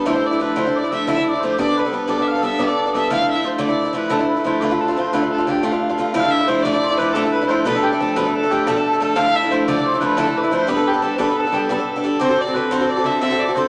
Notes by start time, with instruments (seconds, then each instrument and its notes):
Already playing: hammered dulcimer G4 A4 B4 D5
0.05 steel-string acoustic guitar D3 F3 A3 D4 E4, hammered dulcimer C5, fiddle C5, tin whistle D6
0.10 tin whistle C6
0.15 steel-string acoustic guitar A3 D4 E4
0.24 hammered dulcimer D5, fiddle D5, tin whistle D6
0.31 steel-string acoustic guitar A3 D4 E4
0.39 steel-string acoustic guitar F3 A3 D4, hammered dulcimer B4, fiddle B4
0.56 steel-string acoustic guitar D3 F3 A3 D4 E4, hammered dulcimer C5, fiddle C5, tin whistle C6
0.66 steel-string acoustic guitar A3 D4 E4
0.75 hammered dulcimer D5, fiddle D5, tin whistle D6
0.83 steel-string acoustic guitar A3 D4 E4
0.87 hammered dulcimer E5, tin whistle D6 E6
0.92 steel-string acoustic guitar F3 A3 D4 E4, fiddle E5
1.06 steel-string acoustic guitar D3 F3 A3 D4 E4, hammered dulcimer E5, tin whistle E6
1.11 fiddle E5
1.17 steel-string acoustic guitar A3 D4 E4
1.23 hammered dulcimer D5
1.29 fiddle D5, tin whistle D6
1.34 steel-string acoustic guitar A3 D4 E4
1.40 steel-string acoustic guitar F3 A3, hammered dulcimer C5
1.44 steel-string acoustic guitar D4 E4, fiddle C5
1.57 steel-string acoustic guitar G3 B3 D4 A4, hammered dulcimer D5, fiddle D5, tin whistle D6
1.67 steel-string acoustic guitar B3 D4 A4
1.76 hammered dulcimer B4, fiddle B4, tin whistle B5
1.85 steel-string acoustic guitar B3 D4 A4
1.91 steel-string acoustic guitar G3 B3 D4 A4, hammered dulcimer B4, tin whistle B5
1.96 fiddle B4
2.08 steel-string acoustic guitar G3 B3 D4 A4, hammered dulcimer D5, fiddle D5, tin whistle D6
2.18 steel-string acoustic guitar B3 D4 A4
2.22 fiddle E5
2.27 hammered dulcimer F5, fiddle F5, tin whistle F6
2.35 steel-string acoustic guitar B3 D4 A4
2.42 steel-string acoustic guitar G3 B3 D4 A4, fiddle E5, hammered dulcimer E5, tin whistle E6
2.59 steel-string acoustic guitar G3 B3 D4 A4, hammered dulcimer D5, fiddle D5, tin whistle D6
2.68 steel-string acoustic guitar B3 D4 A4
2.79 hammered dulcimer D5
2.86 steel-string acoustic guitar B3 D4 A4
2.94 steel-string acoustic guitar G3 B3 D4 A4, hammered dulcimer E5, fiddle E5, tin whistle E6
3.10 steel-string acoustic guitar D3 F3 A3 D4 E4, fiddle F5, hammered dulcimer F5, tin whistle F6
3.20 steel-string acoustic guitar A3 D4 E4
3.30 hammered dulcimer E5, fiddle E5, tin whistle E6
3.35 steel-string acoustic guitar A3 D4 E4
3.43 steel-string acoustic guitar F3 A3 D4 E4, hammered dulcimer C5, fiddle C5, tin whistle C6
3.58 steel-string acoustic guitar D3 F3 A3 D4 E4, hammered dulcimer D5, fiddle D5, tin whistle D6
3.68 steel-string acoustic guitar A3 D4 E4
3.85 steel-string acoustic guitar A3 D4 E4
3.93 steel-string acoustic guitar F3 A3 D4 E4
3.97 fiddle B4, hammered dulcimer B4
4.07 steel-string acoustic guitar D3 F3 A3 D4 E4, hammered dulcimer B4, tin whistle A5
4.12 hammered dulcimer A4, fiddle A4
4.19 steel-string acoustic guitar A3 D4 E4
4.24 fiddle C5
4.28 hammered dulcimer B4, fiddle B4, tin whistle B5
4.36 steel-string acoustic guitar A3 D4 E4
4.44 steel-string acoustic guitar F3 A3 D4 E4, fiddle C5, hammered dulcimer C5, tin whistle C6
4.60 steel-string acoustic guitar D3 A3 D4 F4, hammered dulcimer B4, fiddle B4, tin whistle B5 D6
4.71 steel-string acoustic guitar A3 D4 F4, fiddle B4
4.81 fiddle A4, hammered dulcimer A4, tin whistle A5
4.88 steel-string acoustic guitar A3 D4 F4
4.96 steel-string acoustic guitar D3 A3 D4 F4, fiddle C5, hammered dulcimer C5, tin whistle C6
5.12 steel-string acoustic guitar D3 A3 D4 F4, hammered dulcimer B4, fiddle B4, tin whistle B5
5.22 steel-string acoustic guitar A3 D4 F4
5.31 hammered dulcimer A4, fiddle A4, tin whistle A5
5.38 steel-string acoustic guitar A3 D4 F4
5.46 steel-string acoustic guitar D3 A3 D4 F4, hammered dulcimer G4, fiddle G4, tin whistle G5
5.63 steel-string acoustic guitar D3 A3 D4 F4, fiddle F4, hammered dulcimer F4, tin whistle F5
5.72 steel-string acoustic guitar A3 D4 F4
5.89 steel-string acoustic guitar A3 D4 F4
5.98 steel-string acoustic guitar D3 A3 D4 F4
6.14 steel-string acoustic guitar D3 F3 A3 D4 E4, fiddle F5, hammered dulcimer F5, tin whistle G6
6.20 steel-string acoustic guitar E4, tin whistle F6
6.24 steel-string acoustic guitar A3 D4
6.30 fiddle E5, hammered dulcimer E5, tin whistle E6
6.40 steel-string acoustic guitar A3 D4 E4
6.47 steel-string acoustic guitar F3 A3 D4 E4, fiddle C5, hammered dulcimer C5, tin whistle C6
6.62 steel-string acoustic guitar D3 F3 A3 D4 E4, fiddle D5, hammered dulcimer D5, tin whistle D6
6.74 steel-string acoustic guitar A3 D4 E4
6.83 hammered dulcimer C5
6.91 steel-string acoustic guitar A3 D4 E4
6.98 steel-string acoustic guitar F3 A3 D4 E4, fiddle B4, hammered dulcimer B4
7.13 steel-string acoustic guitar D3 F3 A3 D4 E4, fiddle A4, hammered dulcimer A4, tin whistle A5
7.24 steel-string acoustic guitar A3 D4 E4
7.32 fiddle B4, hammered dulcimer B4, tin whistle B5
7.42 steel-string acoustic guitar A3 D4 E4
7.47 steel-string acoustic guitar F3 A3 D4 E4, fiddle C5, hammered dulcimer C5, tin whistle C6
7.64 steel-string acoustic guitar B2 F3 A3 D4 A4, fiddle B4, hammered dulcimer B4, tin whistle B5
7.75 steel-string acoustic guitar A3 D4 A4
7.83 fiddle G4, hammered dulcimer G4, tin whistle G5
7.92 steel-string acoustic guitar A3 D4 A4
7.99 steel-string acoustic guitar F3 A3 D4 A4, fiddle A4, hammered dulcimer A4
8.14 steel-string acoustic guitar B2 F3 A3 D4 A4, fiddle B4, hammered dulcimer B4, tin whistle A5 B5
8.25 steel-string acoustic guitar A3 D4 A4
8.31 hammered dulcimer A4, fiddle A4, tin whistle A5 B5
8.43 steel-string acoustic guitar A3 D4 A4
8.50 steel-string acoustic guitar F3 A3 D4 A4, hammered dulcimer G4, fiddle G4, tin whistle G5
8.65 steel-string acoustic guitar B2 F3 A3 D4 A4, fiddle A4, hammered dulcimer A4, tin whistle A5 B5
8.76 steel-string acoustic guitar A3 D4 A4
8.93 steel-string acoustic guitar A3 D4 A4
8.99 steel-string acoustic guitar F3 A3 D4 A4, fiddle A4, hammered dulcimer A4, tin whistle A5
9.15 steel-string acoustic guitar D3 F3 A3 D4 E4, fiddle F5, hammered dulcimer F5, tin whistle F6
9.25 steel-string acoustic guitar A3 D4 E4
9.34 fiddle E5, hammered dulcimer E5, tin whistle E6
9.43 steel-string acoustic guitar A3 D4 E4
9.50 steel-string acoustic guitar F3 A3 D4 E4, fiddle C5, hammered dulcimer C5, tin whistle C6
9.66 steel-string acoustic guitar D3 F3 A3 D4 E4, fiddle D5, hammered dulcimer D5, tin whistle E6
9.71 tin whistle D6
9.76 steel-string acoustic guitar A3 D4 E4
9.85 hammered dulcimer C5
9.93 steel-string acoustic guitar A3 D4 E4
9.99 steel-string acoustic guitar F3 A3 D4 E4, hammered dulcimer B4, fiddle B4 C5, tin whistle B5
10.17 steel-string acoustic guitar D3 F3 A3 D4 E4, hammered dulcimer A4, fiddle A4, tin whistle A5
10.26 steel-string acoustic guitar A3 D4 E4
10.36 fiddle B4, hammered dulcimer B4, tin whistle D6
10.41 steel-string acoustic guitar A3 D4 E4, tin whistle B5
10.51 steel-string acoustic guitar F3 A3 D4 E4, fiddle C5, hammered dulcimer C5
10.67 steel-string acoustic guitar G3 B3 D4 A4, fiddle B4, hammered dulcimer B4, tin whistle D6
10.71 tin whistle B5
10.77 steel-string acoustic guitar B3 D4 A4
10.87 hammered dulcimer G4, fiddle G4
10.94 steel-string acoustic guitar B3 D4 A4
11.02 steel-string acoustic guitar G3 B3 D4 A4, hammered dulcimer A4, fiddle A4, tin whistle A5
11.16 steel-string acoustic guitar G3 B3 D4, fiddle C5, tin whistle D6
11.20 steel-string acoustic guitar A4, fiddle B4, hammered dulcimer B4, tin whistle B5
11.29 steel-string acoustic guitar B3 D4 A4
11.37 hammered dulcimer A4, fiddle A4, tin whistle A5
11.46 steel-string acoustic guitar B3 D4 A4
11.52 steel-string acoustic guitar G3 B3 D4 A4, fiddle G4, hammered dulcimer G4
11.69 steel-string acoustic guitar G3 B3 D4 A4, fiddle A4, hammered dulcimer A4, tin whistle B5
11.74 tin whistle A5
11.78 steel-string acoustic guitar B3 D4 A4
11.96 steel-string acoustic guitar B3 D4 A4
12.04 steel-string acoustic guitar G3 B3 D4 A4
12.19 steel-string acoustic guitar D3 C4 F#4 A4, hammered dulcimer C5, fiddle C5, tin whistle D6
12.24 tin whistle C6
12.29 steel-string acoustic guitar C4 F#4 A4
12.38 fiddle D5, tin whistle D6
12.46 steel-string acoustic guitar C4 F#4 A4
12.54 steel-string acoustic guitar D3 C4 F#4 A4, hammered dulcimer B4, fiddle B4
12.71 steel-string acoustic guitar D3 C4 F#4 A4, fiddle C5, hammered dulcimer C5, tin whistle C6
12.80 steel-string acoustic guitar C4 F#4 A4
12.89 hammered dulcimer D5, fiddle D5, tin whistle D6
12.97 steel-string acoustic guitar C4 F#4 A4
13.04 steel-string acoustic guitar D3 C4 F#4 A4, hammered dulcimer E5, fiddle E5, tin whistle E6
13.21 steel-string acoustic guitar D3 C4 F#4 A4, hammered dulcimer E5, fiddle E5, tin whistle E6
13.30 steel-string acoustic guitar C4 F#4 A4
13.39 hammered dulcimer D5, fiddle D5, tin whistle D6
13.48 steel-string acoustic guitar C4 F#4 A4
13.55 steel-string acoustic guitar D3 C4 F#4 A4, hammered dulcimer C5, fiddle C5, tin whistle C6